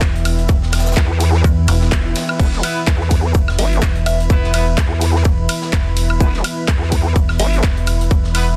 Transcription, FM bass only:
0.01 E1
0.49 E1
1.44 E2
1.68 E1
3.35 E1
3.82 E1
4.30 E1
5.25 E1
5.73 E1
7.16 E1
7.63 E1
8.11 E1

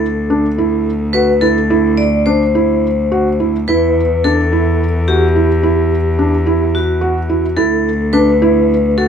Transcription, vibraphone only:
Already playing: A4
1.13 B4
1.41 A4
1.97 D5
2.26 C5
3.68 B4
4.24 A4
5.08 G4
6.75 F#4
7.56 A4
8.13 B4
8.98 A4

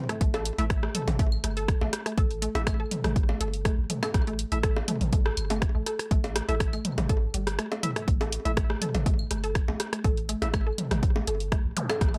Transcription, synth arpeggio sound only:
0.09 A3
0.21 A3
0.34 A4
0.59 A3
0.83 A3
0.95 A4
1.19 A3
1.44 A3
1.57 A4
1.81 A3
2.06 A3
2.18 A4
2.42 A3
2.67 A3
2.80 A4
3.04 A3
3.29 A3
3.41 A4
3.65 A3
3.90 A3
4.03 A4
4.27 A3
4.52 A3
4.64 A4
4.88 A3
5.13 A3
5.26 A4
5.50 A3
5.75 A3
5.86 A4
6.11 A3
6.36 A3
6.49 A4
6.73 A3
6.98 A3
7.10 A4
7.34 G3
7.59 A3
7.72 A3
7.96 A3
8.08 A3
8.21 A4
8.45 A3
8.70 A3
8.82 A4
9.06 A3
9.31 A3
9.44 A4
9.68 A3
9.93 A3
10.04 A4
10.29 A3
10.54 A3
10.67 A4
10.91 A3
11.16 A3
11.27 A4
11.52 A3
11.77 A3
11.90 A4
12.14 A3

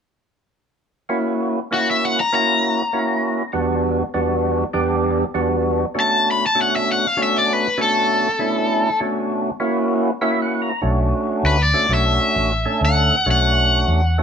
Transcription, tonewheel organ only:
1.09 A#3 C#4 E4 F#4
1.71 A#3 C#4 E4 F#4
2.33 A#3 C#4 E4 F#4
2.93 A#3 C#4 E4 F#4
3.53 E2 G3 B3 D4 F#4
4.14 E2 G3 B3 D4 F#4
4.73 E2 G3 B3 D4 G4
5.34 E2 G3 B3 D4 F#4
5.94 B2 A3 C#4 D4 F#4
6.55 B2 A3 C#4 D4 F#4
7.17 B2 A3 C#4 D4 F#4
7.78 B2 A3 C#4 D4 F#4
8.39 B2 A3 C#4 D4 E4
9.00 B2 A3 C#4 D4 F#4
9.60 A#3 C#4 E4 F#4
10.21 A#3 C#4 E4 F#4 E5
10.42 F#5
10.62 A#5
10.81 A3 C#4 D4 F#4
11.74 A3 C#4 D4 F#4
11.90 A3 C#4 D4 F#4
12.65 A3 C#4 D4 A4
13.26 A3 C#4 D4 F#4
14.18 A3 C#4 D4 F#4

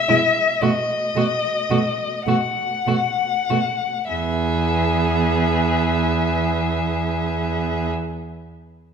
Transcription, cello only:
0.09 B2
0.62 B2
1.15 B2
1.70 B2
2.27 B2
2.87 B2
3.50 B2
4.10 E2

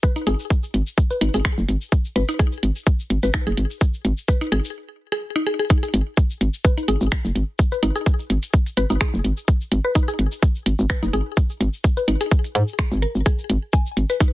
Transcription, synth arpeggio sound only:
0.03 B4
0.16 D#4
0.27 G#4
1.11 B4
1.21 D#4
1.34 G#4
2.16 B4
2.29 D#4
2.39 G#4
3.23 B4
3.34 D#4
3.47 G#4
4.28 B4
4.41 D#4
4.52 G#4
5.12 G#4
5.36 D#4
5.47 G#4
5.59 G#4
5.70 D#4
5.83 G#4
6.65 B4
6.77 D#4
6.88 G#4
7.72 B4
7.83 D#4
7.96 G#4
8.77 B4
8.90 D#4
9.01 G#4
9.85 B4
9.95 D#4
10.08 G#4
10.90 B4
11.03 D#4
11.13 G#4
11.97 B4
12.08 D#4
12.21 G#4
12.55 G#4
12.79 G#4
13.02 A#4
13.26 G#4
13.73 G#5
14.10 B4
14.20 D#4

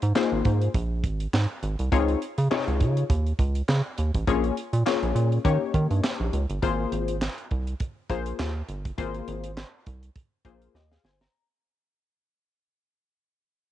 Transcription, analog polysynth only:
0.15 A#3 D#4 F4 G#4 C5
1.92 C4 D#4 F4 G#4 C#5
2.50 C3 D#4 F4 G#4 C#5
4.27 A#3 C#4 F4 G#4 C#5
4.86 A#3 C#4 F4 G#4 C#5
5.45 A#3 C#4 D#4 G4 C#5
6.62 A#3 F4 G#4 C5
8.09 A#3 F4 G#4 C5
8.98 A#3 F4 G#4 C5
10.45 A#3 F4 G#4 C5
10.75 G4 D#5
10.91 G#4 F5
11.04 C5 G#5
11.21 A#5

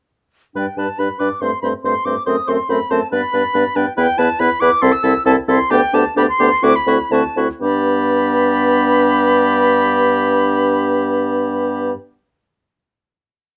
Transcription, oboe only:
0.56 B4
0.79 B4
0.99 B4
1.19 B4
1.42 C5
1.63 C5
1.85 C5
2.06 C5
2.26 C5
2.47 C5
2.69 C5
2.90 C5
3.12 B4
3.33 B4
3.54 B4
3.76 B4
3.97 B4
4.19 B4
4.40 B4
4.62 B4
4.82 A4
5.03 A4
5.26 A4
5.48 A4
5.70 G4
5.94 G4
6.17 G4
6.40 G4
6.63 F#4
6.88 F#4
7.13 F#4
7.37 F#4
7.62 G4

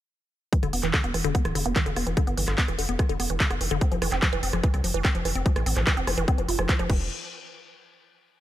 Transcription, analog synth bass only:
0.63 E1
0.73 E1
0.83 E1
1.04 E1
1.14 E1
1.24 E1
1.45 D1
1.55 E1
1.66 E1
1.86 E1
1.96 E1
2.07 E1
2.27 G1
2.38 G1
2.48 G1
2.68 E1
2.79 E1
2.89 E1
3.09 E1
3.20 E1
3.30 E1
3.50 F1
3.61 F1
3.71 F1
3.92 F1
4.02 F1
4.12 F1
4.33 F1
4.43 F1
4.53 F1
4.74 C2
4.84 F1
4.94 F1
5.15 F1
5.25 F1
5.35 F1
5.56 A1
5.66 A1
5.77 A1
5.97 F1
6.07 F1
6.18 F1
6.38 F1
6.48 F1
6.59 F1
6.79 F1
6.90 E1

